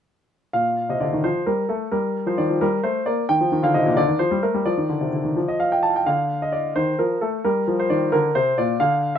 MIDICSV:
0, 0, Header, 1, 2, 480
1, 0, Start_track
1, 0, Tempo, 458015
1, 571, Time_signature, 6, 3, 24, 8
1, 4402, Tempo, 466563
1, 6802, Tempo, 453858
1, 9605, End_track
2, 0, Start_track
2, 0, Title_t, "Grand piano"
2, 0, Program_c, 0, 0
2, 560, Note_on_c, 0, 77, 50
2, 566, Note_on_c, 0, 46, 38
2, 778, Control_c, 0, 64, 127
2, 830, Note_off_c, 0, 46, 0
2, 930, Note_off_c, 0, 77, 0
2, 936, Note_on_c, 0, 48, 36
2, 943, Note_on_c, 0, 75, 42
2, 1051, Note_off_c, 0, 48, 0
2, 1053, Note_on_c, 0, 74, 43
2, 1056, Note_on_c, 0, 50, 36
2, 1060, Note_off_c, 0, 75, 0
2, 1170, Note_off_c, 0, 50, 0
2, 1183, Note_on_c, 0, 51, 42
2, 1293, Note_off_c, 0, 51, 0
2, 1294, Note_off_c, 0, 74, 0
2, 1298, Note_on_c, 0, 72, 57
2, 1303, Note_on_c, 0, 53, 46
2, 1309, Control_c, 0, 64, 0
2, 1472, Note_off_c, 0, 53, 0
2, 1534, Note_on_c, 0, 70, 52
2, 1535, Note_off_c, 0, 72, 0
2, 1538, Note_on_c, 0, 55, 38
2, 1708, Note_off_c, 0, 55, 0
2, 1769, Note_on_c, 0, 69, 44
2, 1773, Note_off_c, 0, 70, 0
2, 1774, Note_on_c, 0, 57, 40
2, 1946, Note_off_c, 0, 57, 0
2, 2007, Note_on_c, 0, 70, 52
2, 2010, Note_off_c, 0, 69, 0
2, 2013, Note_on_c, 0, 55, 41
2, 2243, Control_c, 0, 64, 127
2, 2274, Note_off_c, 0, 55, 0
2, 2373, Note_off_c, 0, 70, 0
2, 2374, Note_on_c, 0, 53, 41
2, 2379, Note_on_c, 0, 72, 47
2, 2489, Note_off_c, 0, 53, 0
2, 2493, Note_on_c, 0, 74, 54
2, 2496, Note_on_c, 0, 51, 40
2, 2497, Note_off_c, 0, 72, 0
2, 2609, Note_off_c, 0, 51, 0
2, 2616, Note_on_c, 0, 53, 42
2, 2728, Note_off_c, 0, 53, 0
2, 2732, Note_off_c, 0, 74, 0
2, 2737, Note_on_c, 0, 70, 58
2, 2741, Note_on_c, 0, 55, 51
2, 2745, Control_c, 0, 64, 0
2, 2909, Note_off_c, 0, 55, 0
2, 2971, Note_on_c, 0, 72, 56
2, 2972, Note_off_c, 0, 70, 0
2, 2976, Note_on_c, 0, 57, 47
2, 3145, Note_off_c, 0, 57, 0
2, 3206, Note_on_c, 0, 74, 56
2, 3208, Note_on_c, 0, 58, 44
2, 3209, Note_off_c, 0, 72, 0
2, 3380, Note_off_c, 0, 58, 0
2, 3445, Note_off_c, 0, 74, 0
2, 3447, Note_on_c, 0, 79, 68
2, 3451, Note_on_c, 0, 51, 48
2, 3562, Note_off_c, 0, 51, 0
2, 3571, Note_on_c, 0, 53, 45
2, 3643, Control_c, 0, 64, 127
2, 3681, Note_off_c, 0, 53, 0
2, 3689, Note_on_c, 0, 51, 51
2, 3800, Note_off_c, 0, 51, 0
2, 3802, Note_on_c, 0, 50, 46
2, 3804, Note_off_c, 0, 79, 0
2, 3810, Note_on_c, 0, 77, 54
2, 3916, Note_off_c, 0, 50, 0
2, 3923, Note_on_c, 0, 75, 58
2, 3926, Note_off_c, 0, 77, 0
2, 3929, Note_on_c, 0, 48, 45
2, 4040, Note_off_c, 0, 48, 0
2, 4043, Note_on_c, 0, 46, 48
2, 4156, Note_off_c, 0, 46, 0
2, 4158, Note_on_c, 0, 74, 72
2, 4162, Note_off_c, 0, 75, 0
2, 4162, Note_on_c, 0, 50, 54
2, 4175, Control_c, 0, 64, 0
2, 4276, Note_off_c, 0, 50, 0
2, 4279, Note_on_c, 0, 51, 44
2, 4393, Note_on_c, 0, 72, 63
2, 4394, Note_off_c, 0, 51, 0
2, 4397, Note_on_c, 0, 53, 47
2, 4400, Note_off_c, 0, 74, 0
2, 4512, Note_off_c, 0, 53, 0
2, 4517, Note_on_c, 0, 55, 46
2, 4632, Note_off_c, 0, 55, 0
2, 4635, Note_off_c, 0, 72, 0
2, 4635, Note_on_c, 0, 70, 54
2, 4640, Note_on_c, 0, 57, 44
2, 4754, Note_off_c, 0, 57, 0
2, 4756, Note_on_c, 0, 55, 42
2, 4870, Note_on_c, 0, 74, 55
2, 4872, Note_off_c, 0, 55, 0
2, 4876, Note_on_c, 0, 53, 48
2, 4878, Note_off_c, 0, 70, 0
2, 4992, Note_off_c, 0, 53, 0
2, 4993, Note_on_c, 0, 51, 42
2, 5074, Control_c, 0, 64, 127
2, 5111, Note_off_c, 0, 51, 0
2, 5116, Note_on_c, 0, 50, 39
2, 5232, Note_off_c, 0, 50, 0
2, 5235, Note_on_c, 0, 48, 37
2, 5352, Note_off_c, 0, 48, 0
2, 5355, Note_on_c, 0, 50, 34
2, 5472, Note_off_c, 0, 50, 0
2, 5480, Note_on_c, 0, 51, 39
2, 5595, Note_off_c, 0, 51, 0
2, 5598, Note_on_c, 0, 53, 43
2, 5615, Control_c, 0, 64, 0
2, 5719, Note_off_c, 0, 74, 0
2, 5722, Note_on_c, 0, 75, 45
2, 5824, Control_c, 0, 64, 127
2, 5839, Note_on_c, 0, 77, 51
2, 5845, Note_off_c, 0, 75, 0
2, 5964, Note_off_c, 0, 77, 0
2, 5966, Note_on_c, 0, 79, 52
2, 6075, Note_on_c, 0, 81, 53
2, 6088, Note_off_c, 0, 79, 0
2, 6123, Note_off_c, 0, 53, 0
2, 6202, Note_off_c, 0, 81, 0
2, 6213, Note_on_c, 0, 79, 47
2, 6320, Note_on_c, 0, 77, 56
2, 6323, Note_on_c, 0, 50, 42
2, 6331, Note_off_c, 0, 79, 0
2, 6339, Control_c, 0, 64, 0
2, 6524, Control_c, 0, 64, 127
2, 6680, Note_off_c, 0, 77, 0
2, 6687, Note_on_c, 0, 75, 46
2, 6793, Note_on_c, 0, 74, 46
2, 6804, Note_off_c, 0, 75, 0
2, 6836, Note_off_c, 0, 50, 0
2, 7038, Note_off_c, 0, 74, 0
2, 7038, Note_on_c, 0, 72, 61
2, 7042, Note_on_c, 0, 51, 44
2, 7059, Control_c, 0, 64, 0
2, 7215, Note_off_c, 0, 51, 0
2, 7281, Note_off_c, 0, 72, 0
2, 7282, Note_on_c, 0, 70, 51
2, 7288, Note_on_c, 0, 53, 40
2, 7460, Note_off_c, 0, 53, 0
2, 7522, Note_on_c, 0, 69, 51
2, 7523, Note_off_c, 0, 70, 0
2, 7528, Note_on_c, 0, 57, 44
2, 7700, Note_off_c, 0, 57, 0
2, 7764, Note_off_c, 0, 69, 0
2, 7766, Note_on_c, 0, 70, 58
2, 7770, Note_on_c, 0, 55, 47
2, 7942, Note_off_c, 0, 55, 0
2, 7947, Control_c, 0, 64, 127
2, 8010, Note_on_c, 0, 53, 47
2, 8126, Note_off_c, 0, 70, 0
2, 8137, Note_on_c, 0, 72, 53
2, 8181, Note_off_c, 0, 53, 0
2, 8245, Note_on_c, 0, 74, 53
2, 8248, Note_on_c, 0, 51, 46
2, 8251, Note_off_c, 0, 72, 0
2, 8419, Note_off_c, 0, 51, 0
2, 8482, Note_on_c, 0, 70, 68
2, 8484, Note_off_c, 0, 74, 0
2, 8488, Note_on_c, 0, 50, 52
2, 8500, Control_c, 0, 64, 0
2, 8659, Note_off_c, 0, 50, 0
2, 8723, Note_off_c, 0, 70, 0
2, 8725, Note_on_c, 0, 72, 65
2, 8730, Note_on_c, 0, 48, 53
2, 8899, Note_off_c, 0, 48, 0
2, 8962, Note_off_c, 0, 72, 0
2, 8966, Note_on_c, 0, 74, 64
2, 8972, Note_on_c, 0, 46, 53
2, 9140, Note_off_c, 0, 46, 0
2, 9198, Note_on_c, 0, 77, 67
2, 9202, Note_off_c, 0, 74, 0
2, 9206, Note_on_c, 0, 50, 49
2, 9383, Control_c, 0, 64, 127
2, 9560, Note_off_c, 0, 77, 0
2, 9605, Note_off_c, 0, 50, 0
2, 9605, End_track
0, 0, End_of_file